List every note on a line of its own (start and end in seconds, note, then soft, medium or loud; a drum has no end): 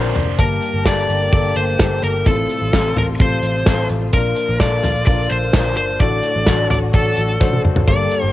0.00 0.11 A#1 medium
0.00 0.11 A#2 medium
0.00 0.15 A#2 medium
0.00 0.16 D3 medium
0.00 0.16 F3 medium
0.00 0.16 C4 medium
0.00 0.15 D4 medium
0.00 0.41 D4 medium
0.00 0.14 A#4 medium
0.00 0.41 A#4 medium
0.00 0.41 C5 medium
0.15 0.35 F1 medium
0.15 0.40 F3 soft
0.15 0.40 C4 soft
0.15 0.39 D4 medium
0.15 0.39 A#4 medium
0.15 closed hi-hat medium
0.15 floor tom medium
0.38 0.58 G1 medium
0.38 1.05 G2 soft
0.38 2.24 D3 medium
0.38 4.09 G3 medium
0.38 2.24 A#3 medium
0.38 0.80 A#3 medium
0.38 0.80 G4 soft
0.38 2.24 G4 medium
0.38 0.83 A#4 medium
0.38 0.80 A5 medium
0.38 kick medium
0.38 closed hi-hat medium
0.63 closed hi-hat medium
0.74 0.84 G1 medium
0.85 1.05 G1 medium
0.85 1.26 A#3 medium
0.85 1.26 G4 medium
0.85 1.26 A4 medium
0.85 1.32 D5 medium
0.85 kick medium
0.85 snare medium
0.85 clap medium
0.85 closed hi-hat medium
1.09 1.28 G1 medium
1.09 closed hi-hat medium
1.33 1.52 G1 medium
1.33 1.74 A#3 medium
1.33 1.74 G4 medium
1.33 1.74 A4 medium
1.33 1.54 D5 medium
1.33 kick loud
1.33 closed hi-hat medium
1.56 1.75 G1 medium
1.56 2.03 C5 medium
1.56 closed hi-hat medium
1.79 1.99 G1 medium
1.79 2.20 A#3 medium
1.79 2.20 G4 medium
1.79 2.20 A4 medium
1.79 kick loud
1.79 snare loud
1.79 clap medium
1.79 closed hi-hat medium
2.03 2.22 G1 medium
2.03 2.27 A#4 medium
2.03 closed hi-hat medium
2.25 2.45 A1 medium
2.25 2.92 A2 medium
2.25 4.11 C3 medium
2.25 5.96 F3 medium
2.25 2.67 C4 medium
2.25 2.67 F4 medium
2.25 4.11 F4 medium
2.25 2.67 A4 medium
2.25 2.98 A4 medium
2.25 kick medium
2.25 closed hi-hat medium
2.49 closed hi-hat medium
2.61 2.71 A1 medium
2.72 2.92 A1 medium
2.72 3.14 C4 medium
2.72 3.14 F4 medium
2.72 3.14 A4 medium
2.72 kick medium
2.72 snare medium
2.72 clap medium
2.72 closed hi-hat medium
2.96 3.15 A1 medium
2.96 3.04 A#4 medium
2.96 closed hi-hat medium
2.96 floor tom medium
3.19 3.39 A1 medium
3.19 3.61 C4 medium
3.19 3.61 F4 medium
3.19 3.61 A4 medium
3.19 3.87 C5 medium
3.19 kick loud
3.19 closed hi-hat medium
3.43 3.62 A1 medium
3.43 closed hi-hat medium
3.66 3.86 A1 medium
3.66 4.07 C4 medium
3.66 4.07 F4 medium
3.66 4.07 A4 medium
3.66 kick loud
3.66 snare medium
3.66 clap medium
3.66 closed hi-hat medium
3.89 4.09 A1 medium
3.89 closed hi-hat medium
4.13 4.32 A#1 medium
4.13 4.79 A#2 soft
4.13 8.32 D3 medium
4.13 5.99 A#3 medium
4.13 4.54 D4 medium
4.13 4.54 F4 medium
4.13 5.99 F4 medium
4.13 4.54 A#4 medium
4.13 4.57 A#4 medium
4.13 kick medium
4.13 closed hi-hat medium
4.36 closed hi-hat medium
4.49 4.58 A#1 medium
4.59 4.79 A#1 medium
4.59 5.01 D4 medium
4.59 5.01 F4 medium
4.59 5.01 A4 medium
4.59 5.05 D5 medium
4.59 kick medium
4.59 snare medium
4.59 clap medium
4.59 closed hi-hat medium
4.83 5.03 A#1 medium
4.83 snare soft
4.83 closed hi-hat medium
4.83 floor tom medium
5.06 5.26 A#1 loud
5.06 5.48 D4 medium
5.06 5.48 F4 medium
5.06 5.48 A#4 medium
5.06 5.31 D5 medium
5.06 kick loud
5.06 closed hi-hat medium
5.30 5.50 A#1 medium
5.30 5.76 C5 medium
5.30 closed hi-hat medium
5.53 5.77 A#1 medium
5.53 5.94 D4 medium
5.53 5.95 F4 medium
5.53 5.95 A#4 medium
5.53 kick loud
5.53 snare medium
5.53 clap medium
5.53 closed hi-hat medium
5.77 5.96 G1 medium
5.77 6.01 C5 medium
5.77 closed hi-hat medium
5.99 6.19 A1 medium
5.99 6.67 A2 soft
5.99 7.85 F#3 medium
5.99 6.41 D4 medium
5.99 7.85 F#4 medium
5.99 6.42 F#4 medium
5.99 8.32 A4 medium
5.99 6.42 A4 medium
5.99 6.66 D5 medium
5.99 kick medium
5.99 closed hi-hat medium
6.23 closed hi-hat medium
6.36 6.45 A1 medium
6.47 6.67 A1 medium
6.47 6.88 D4 medium
6.47 6.88 F#4 medium
6.47 6.88 A4 medium
6.47 kick medium
6.47 snare medium
6.47 clap medium
6.47 closed hi-hat medium
6.70 6.90 A1 medium
6.70 6.77 D5 medium
6.70 closed hi-hat medium
6.70 floor tom medium
6.93 7.13 A1 medium
6.93 7.35 D4 medium
6.93 7.35 F#4 medium
6.93 7.35 A4 medium
6.93 7.61 A4 medium
6.93 kick medium
6.93 closed hi-hat medium
7.17 7.37 A1 medium
7.17 closed hi-hat medium
7.40 7.60 A1 medium
7.40 7.81 D4 medium
7.40 7.82 F#4 medium
7.40 7.82 C5 medium
7.40 kick loud
7.40 snare soft
7.53 high tom medium
7.64 7.84 F#1 medium
7.64 mid tom medium
7.76 floor tom medium
7.87 8.07 G1 medium
7.87 8.32 G2 medium
7.87 8.28 A#3 medium
7.87 8.32 A#3 medium
7.87 8.32 G4 medium
7.87 8.29 G4 medium
7.87 8.29 A4 medium
7.87 8.31 D5 medium
7.87 kick medium
7.87 closed hi-hat medium
8.11 closed hi-hat medium
8.24 8.32 G1 medium